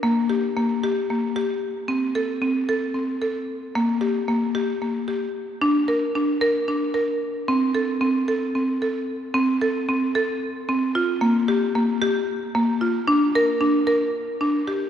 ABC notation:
X:1
M:7/8
L:1/8
Q:1/4=113
K:Gdor
V:1 name="Marimba"
B, G B, G B, G2 | C A C A C A2 | B, G B, G B, G2 | D B D B D B2 |
C A C A C A2 | C A C A2 C F | B, G B, G2 B, F | D B D B2 D G |]